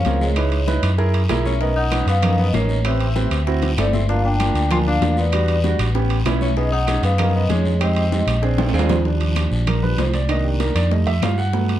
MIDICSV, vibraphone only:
0, 0, Header, 1, 2, 480
1, 0, Start_track
1, 0, Tempo, 310398
1, 563, Time_signature, 4, 2, 24, 8
1, 18240, End_track
2, 0, Start_track
2, 0, Title_t, "Vibraphone"
2, 0, Program_c, 0, 11
2, 0, Note_on_c, 0, 77, 97
2, 346, Note_off_c, 0, 77, 0
2, 358, Note_on_c, 0, 73, 86
2, 1238, Note_off_c, 0, 73, 0
2, 2265, Note_on_c, 0, 76, 99
2, 2478, Note_off_c, 0, 76, 0
2, 2501, Note_on_c, 0, 75, 91
2, 2739, Note_off_c, 0, 75, 0
2, 2747, Note_on_c, 0, 78, 108
2, 3182, Note_off_c, 0, 78, 0
2, 3227, Note_on_c, 0, 77, 99
2, 3705, Note_on_c, 0, 75, 82
2, 3709, Note_off_c, 0, 77, 0
2, 3939, Note_on_c, 0, 73, 89
2, 3941, Note_off_c, 0, 75, 0
2, 4425, Note_off_c, 0, 73, 0
2, 4432, Note_on_c, 0, 76, 84
2, 5316, Note_off_c, 0, 76, 0
2, 5865, Note_on_c, 0, 74, 91
2, 6090, Note_on_c, 0, 76, 80
2, 6101, Note_off_c, 0, 74, 0
2, 6333, Note_off_c, 0, 76, 0
2, 6340, Note_on_c, 0, 77, 87
2, 6555, Note_off_c, 0, 77, 0
2, 6572, Note_on_c, 0, 79, 92
2, 7292, Note_on_c, 0, 80, 104
2, 7309, Note_off_c, 0, 79, 0
2, 7398, Note_off_c, 0, 80, 0
2, 7539, Note_on_c, 0, 77, 97
2, 7977, Note_off_c, 0, 77, 0
2, 8030, Note_on_c, 0, 74, 82
2, 8914, Note_off_c, 0, 74, 0
2, 9938, Note_on_c, 0, 76, 106
2, 10176, Note_off_c, 0, 76, 0
2, 10180, Note_on_c, 0, 75, 98
2, 10412, Note_on_c, 0, 78, 115
2, 10417, Note_off_c, 0, 75, 0
2, 10853, Note_off_c, 0, 78, 0
2, 10890, Note_on_c, 0, 77, 105
2, 11331, Note_off_c, 0, 77, 0
2, 11381, Note_on_c, 0, 75, 85
2, 11617, Note_off_c, 0, 75, 0
2, 11620, Note_on_c, 0, 73, 87
2, 12057, Note_off_c, 0, 73, 0
2, 12097, Note_on_c, 0, 75, 80
2, 12986, Note_off_c, 0, 75, 0
2, 18240, End_track
0, 0, End_of_file